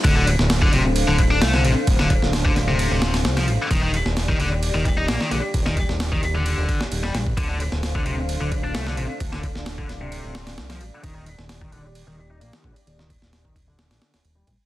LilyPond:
<<
  \new Staff \with { instrumentName = "Analog synth pad" } { \time 4/4 \key d \phrygian \tempo 4 = 131 << { <d' a' f''>1~ | <d' a' f''>1 | d''1~ | d''1 |
<d' a' f''>1~ | <d' a' f''>1 | d''1~ | d''1 | } \\ { c''1~ | c''1 | g'1~ | g'1 |
c''1 | d''1 | g'1~ | g'1 | } >> }
  \new Staff \with { instrumentName = "Distorted electric guitar" } { \clef bass \time 4/4 \key d \phrygian d16 d16 r8. d16 c16 r8 d16 r16 d'16 a16 d16 c16 r16 | r16 d16 r8. d16 r16 c4 r8 f16 r8 | ees16 ees16 r8. ees16 d16 r8 ees16 r16 ees'16 bes16 ees16 d16 r16 | r16 ees16 r8. ees16 r16 d4 r8 g16 r8 |
d16 d16 r8. d16 c16 r8 d16 r16 d'16 a16 d16 c16 r16 | r16 d16 r8. d16 r16 c4 r8 f16 r8 | ees16 ees16 r8. ees16 d16 r8 ees16 r16 ees'16 bes16 ees16 d16 r16 | r16 ees16 r8. ees16 r16 d4 r8 g16 r8 | }
  \new Staff \with { instrumentName = "Analog synth bass" } { \clef bass \time 4/4 \key d \phrygian d,,8. d,,8. d,,8. d,,8. c,8 a,,16 r16 | d,,8. d,,8. d,,8. d,,8. c,8 a,,16 r16 | ees,,8. ees,,8. ees,,8. ees,,8. bes,,16 r16 bes,,16 r16 | ees,,8. ees,,8. ees,,8. ees,,16 r16 ees,,16 ees,,8 bes,,8 |
d,,8. d,,8. d,,8. d,,8. c,8 a,,16 r16 | d,,8. d,,8. d,,8. d,,8. c,8 a,,16 r16 | ees,,8. ees,,8. ees,,8. ees,,8. bes,,16 r16 bes,,16 r16 | ees,,8. ees,,8. ees,,8. bes,,16 r16 ees,,16 ees,,8 bes,,16 r16 | }
  \new DrumStaff \with { instrumentName = "Drums" } \drummode { \time 4/4 <bd cymr>8 cymr16 sn16 <cymr sn>16 bd16 cymr8 cymr8 <bd cymr>8 <cymr sn>16 sn16 cymr8 | <bd cymr>16 sn16 <bd cymr>16 sn16 <cymr sn>16 bd16 <cymr sn>8 cymr8 <cymr sn>16 <cymr sn>16 <cymr sn>16 <cymr sn>16 cymr8 | <bd cymr>8 cymr16 sn16 <cymr sn>16 bd16 cymr8 cymr8 <bd cymr>8 <cymr sn>16 sn16 cymr8 | <bd cymr>16 sn16 <bd cymr>16 sn16 <cymr sn>16 bd16 cymr8 cymr8 <bd cymr>16 sn16 cymr16 sn16 <cymr sn>16 bd16 |
<bd cymr>8 cymr16 sn16 <cymr sn>16 bd16 cymr8 cymr8 <bd cymr>8 <cymr sn>16 sn16 cymr8 | <bd cymr>16 sn16 <bd cymr>16 sn16 <cymr sn>16 bd16 <cymr sn>8 cymr8 <cymr sn>16 <cymr sn>16 <cymr sn>16 <cymr sn>16 cymr8 | <bd cymr>8 cymr16 sn16 <cymr sn>16 bd16 cymr8 cymr4 cymr16 <cymr sn>16 bd16 cymr16 | cymr16 sn16 <bd cymr>16 sn16 <cymr sn>16 bd16 <bd cymr>8 <cymr sn>16 <cymr sn>16 <cymr sn>16 <cymr sn>16 cymr8 <bd cymr>8 | }
>>